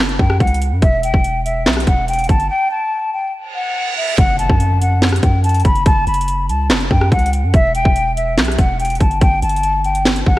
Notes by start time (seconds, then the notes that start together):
0.00 F#1
0.09 closed hi-hat
0.19 F#2 G5, kick
0.30 cross-stick
0.40 C#2 F#5, kick, closed hi-hat
0.47 closed hi-hat
0.54 closed hi-hat
0.62 closed hi-hat
0.72 F#2
0.82 E1 E5, kick, closed hi-hat
1.03 G5, closed hi-hat
1.14 E1, kick
1.24 closed hi-hat
1.45 E5, closed hi-hat
1.66 B1, snare, clap, closed hi-hat
1.73 cross-stick, closed hi-hat
1.80 closed hi-hat
1.87 E1 F#5, kick, closed hi-hat
2.08 G5, closed hi-hat
2.14 closed hi-hat
2.19 closed hi-hat
2.24 closed hi-hat
2.29 G1 A5, kick, closed hi-hat
2.40 closed hi-hat
2.50 G5
2.71 A5
3.13 G5
3.34 reverse cymbal
3.55 F#5
3.97 E5
4.18 F#1 F#5, kick, closed hi-hat, impact
4.39 A5, closed hi-hat
4.50 F#2, kick
4.60 closed hi-hat
4.81 F#5, closed hi-hat
5.02 snare, clap, closed hi-hat
5.09 cross-stick, closed hi-hat
5.16 closed hi-hat
5.23 F#2 G5, kick, closed hi-hat
5.44 A5, closed hi-hat
5.49 closed hi-hat
5.54 closed hi-hat
5.60 closed hi-hat
5.65 F#1 B5, kick, closed hi-hat
5.75 closed hi-hat
5.86 F#1 A5, kick, closed hi-hat
6.07 F#1 B5, closed hi-hat
6.14 closed hi-hat
6.21 closed hi-hat
6.28 closed hi-hat
6.49 C#2 A5, closed hi-hat
6.70 F#1, snare, clap, closed hi-hat
6.80 closed hi-hat
6.91 F#2 G5, kick
7.01 cross-stick
7.12 C#2 F#5, kick, closed hi-hat
7.19 closed hi-hat
7.26 closed hi-hat
7.33 closed hi-hat
7.43 F#2
7.54 E1 E5, kick, closed hi-hat
7.75 G5, closed hi-hat
7.85 E1, kick
7.96 closed hi-hat
8.16 E5, closed hi-hat
8.38 B1, snare, clap, closed hi-hat
8.45 cross-stick, closed hi-hat
8.52 closed hi-hat
8.58 E1 F#5, kick, closed hi-hat
8.80 G5, closed hi-hat
8.85 closed hi-hat
8.90 closed hi-hat
8.95 closed hi-hat
9.00 G1 A5, kick, closed hi-hat
9.11 closed hi-hat
9.21 G1 G5, kick, closed hi-hat
9.42 G1 A5, closed hi-hat
9.49 closed hi-hat
9.56 closed hi-hat
9.63 closed hi-hat
9.84 G5, closed hi-hat
9.95 closed hi-hat
10.05 snare, clap, closed hi-hat
10.16 closed hi-hat
10.26 G1 F#5, kick